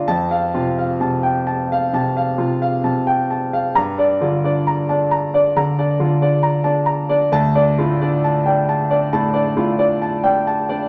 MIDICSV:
0, 0, Header, 1, 2, 480
1, 0, Start_track
1, 0, Tempo, 940439
1, 28, Time_signature, 4, 2, 24, 8
1, 988, Tempo, 909091
1, 2428, Tempo, 894188
1, 5768, End_track
2, 0, Start_track
2, 0, Title_t, "Grand piano"
2, 0, Program_c, 0, 0
2, 0, Control_c, 0, 64, 127
2, 38, Control_c, 0, 64, 0
2, 39, Note_on_c, 0, 81, 73
2, 41, Note_on_c, 0, 41, 54
2, 134, Control_c, 0, 64, 127
2, 158, Note_on_c, 0, 77, 50
2, 227, Note_off_c, 0, 81, 0
2, 278, Note_on_c, 0, 48, 47
2, 278, Note_on_c, 0, 65, 47
2, 347, Note_off_c, 0, 77, 0
2, 400, Note_on_c, 0, 77, 49
2, 467, Note_off_c, 0, 48, 0
2, 467, Note_off_c, 0, 65, 0
2, 514, Note_on_c, 0, 48, 44
2, 514, Note_on_c, 0, 81, 48
2, 588, Note_off_c, 0, 77, 0
2, 628, Note_on_c, 0, 79, 41
2, 705, Note_off_c, 0, 48, 0
2, 705, Note_off_c, 0, 81, 0
2, 750, Note_off_c, 0, 79, 0
2, 750, Note_on_c, 0, 81, 51
2, 878, Note_on_c, 0, 77, 53
2, 940, Note_off_c, 0, 81, 0
2, 974, Note_off_c, 0, 41, 0
2, 987, Note_on_c, 0, 48, 50
2, 991, Note_on_c, 0, 81, 57
2, 1064, Note_off_c, 0, 77, 0
2, 1110, Note_on_c, 0, 77, 48
2, 1180, Note_off_c, 0, 48, 0
2, 1182, Note_off_c, 0, 81, 0
2, 1223, Note_on_c, 0, 65, 48
2, 1224, Note_on_c, 0, 48, 42
2, 1301, Note_off_c, 0, 77, 0
2, 1348, Note_on_c, 0, 77, 50
2, 1416, Note_off_c, 0, 65, 0
2, 1417, Note_off_c, 0, 48, 0
2, 1466, Note_on_c, 0, 48, 44
2, 1466, Note_on_c, 0, 81, 48
2, 1538, Note_off_c, 0, 77, 0
2, 1587, Note_on_c, 0, 79, 47
2, 1658, Note_off_c, 0, 48, 0
2, 1658, Note_off_c, 0, 81, 0
2, 1706, Note_off_c, 0, 79, 0
2, 1711, Note_on_c, 0, 81, 47
2, 1831, Note_on_c, 0, 77, 54
2, 1902, Note_off_c, 0, 81, 0
2, 1948, Note_on_c, 0, 43, 57
2, 1948, Note_on_c, 0, 82, 68
2, 1951, Note_off_c, 0, 77, 0
2, 1958, Control_c, 0, 64, 0
2, 2051, Control_c, 0, 64, 127
2, 2069, Note_on_c, 0, 62, 48
2, 2072, Note_on_c, 0, 74, 53
2, 2142, Note_off_c, 0, 82, 0
2, 2190, Note_on_c, 0, 65, 50
2, 2192, Note_on_c, 0, 50, 46
2, 2261, Note_off_c, 0, 62, 0
2, 2263, Note_off_c, 0, 74, 0
2, 2312, Note_on_c, 0, 62, 51
2, 2315, Note_on_c, 0, 74, 54
2, 2381, Note_off_c, 0, 65, 0
2, 2382, Note_off_c, 0, 50, 0
2, 2432, Note_on_c, 0, 82, 51
2, 2502, Note_off_c, 0, 62, 0
2, 2504, Note_off_c, 0, 74, 0
2, 2551, Note_on_c, 0, 81, 42
2, 2552, Note_on_c, 0, 62, 42
2, 2623, Note_off_c, 0, 82, 0
2, 2669, Note_on_c, 0, 82, 52
2, 2671, Note_off_c, 0, 81, 0
2, 2744, Note_off_c, 0, 62, 0
2, 2791, Note_on_c, 0, 62, 47
2, 2793, Note_on_c, 0, 74, 52
2, 2863, Note_off_c, 0, 82, 0
2, 2890, Note_off_c, 0, 43, 0
2, 2911, Note_on_c, 0, 50, 50
2, 2913, Note_on_c, 0, 82, 61
2, 2984, Note_off_c, 0, 62, 0
2, 2985, Note_off_c, 0, 74, 0
2, 3031, Note_on_c, 0, 62, 51
2, 3031, Note_on_c, 0, 74, 51
2, 3103, Note_off_c, 0, 50, 0
2, 3103, Note_off_c, 0, 82, 0
2, 3144, Note_on_c, 0, 50, 46
2, 3146, Note_on_c, 0, 65, 48
2, 3220, Note_off_c, 0, 74, 0
2, 3221, Note_off_c, 0, 62, 0
2, 3263, Note_on_c, 0, 62, 50
2, 3264, Note_on_c, 0, 74, 53
2, 3334, Note_off_c, 0, 50, 0
2, 3336, Note_off_c, 0, 65, 0
2, 3375, Note_on_c, 0, 82, 47
2, 3452, Note_off_c, 0, 62, 0
2, 3452, Note_off_c, 0, 74, 0
2, 3489, Note_on_c, 0, 81, 49
2, 3492, Note_on_c, 0, 62, 48
2, 3567, Note_off_c, 0, 82, 0
2, 3607, Note_on_c, 0, 82, 54
2, 3613, Note_off_c, 0, 81, 0
2, 3685, Note_off_c, 0, 62, 0
2, 3732, Note_on_c, 0, 74, 55
2, 3735, Note_on_c, 0, 62, 49
2, 3803, Note_off_c, 0, 82, 0
2, 3854, Note_off_c, 0, 74, 0
2, 3854, Note_on_c, 0, 38, 61
2, 3856, Note_off_c, 0, 62, 0
2, 3857, Note_on_c, 0, 81, 75
2, 3865, Control_c, 0, 64, 0
2, 3948, Control_c, 0, 64, 127
2, 3978, Note_on_c, 0, 62, 55
2, 3979, Note_on_c, 0, 74, 56
2, 4049, Note_off_c, 0, 81, 0
2, 4104, Note_on_c, 0, 65, 55
2, 4105, Note_on_c, 0, 45, 51
2, 4170, Note_off_c, 0, 62, 0
2, 4170, Note_off_c, 0, 74, 0
2, 4226, Note_on_c, 0, 74, 57
2, 4228, Note_on_c, 0, 62, 53
2, 4294, Note_off_c, 0, 45, 0
2, 4294, Note_off_c, 0, 65, 0
2, 4350, Note_on_c, 0, 81, 52
2, 4416, Note_off_c, 0, 74, 0
2, 4417, Note_off_c, 0, 62, 0
2, 4465, Note_on_c, 0, 79, 43
2, 4468, Note_on_c, 0, 62, 49
2, 4539, Note_off_c, 0, 81, 0
2, 4584, Note_off_c, 0, 79, 0
2, 4589, Note_on_c, 0, 81, 56
2, 4658, Note_off_c, 0, 62, 0
2, 4705, Note_on_c, 0, 74, 54
2, 4707, Note_on_c, 0, 62, 48
2, 4778, Note_off_c, 0, 81, 0
2, 4800, Note_off_c, 0, 38, 0
2, 4825, Note_on_c, 0, 45, 55
2, 4825, Note_on_c, 0, 81, 65
2, 4895, Note_off_c, 0, 74, 0
2, 4896, Note_off_c, 0, 62, 0
2, 4935, Note_on_c, 0, 74, 53
2, 4937, Note_on_c, 0, 62, 55
2, 5015, Note_off_c, 0, 45, 0
2, 5016, Note_off_c, 0, 81, 0
2, 5060, Note_on_c, 0, 45, 48
2, 5062, Note_on_c, 0, 65, 51
2, 5131, Note_off_c, 0, 74, 0
2, 5132, Note_off_c, 0, 62, 0
2, 5179, Note_on_c, 0, 62, 53
2, 5179, Note_on_c, 0, 74, 59
2, 5255, Note_off_c, 0, 45, 0
2, 5256, Note_off_c, 0, 65, 0
2, 5302, Note_on_c, 0, 81, 54
2, 5376, Note_off_c, 0, 74, 0
2, 5377, Note_off_c, 0, 62, 0
2, 5419, Note_on_c, 0, 62, 53
2, 5420, Note_on_c, 0, 79, 52
2, 5499, Note_off_c, 0, 81, 0
2, 5545, Note_off_c, 0, 79, 0
2, 5546, Note_on_c, 0, 81, 54
2, 5618, Note_off_c, 0, 62, 0
2, 5665, Note_on_c, 0, 74, 56
2, 5668, Note_on_c, 0, 62, 52
2, 5741, Note_off_c, 0, 81, 0
2, 5768, Note_off_c, 0, 62, 0
2, 5768, Note_off_c, 0, 74, 0
2, 5768, End_track
0, 0, End_of_file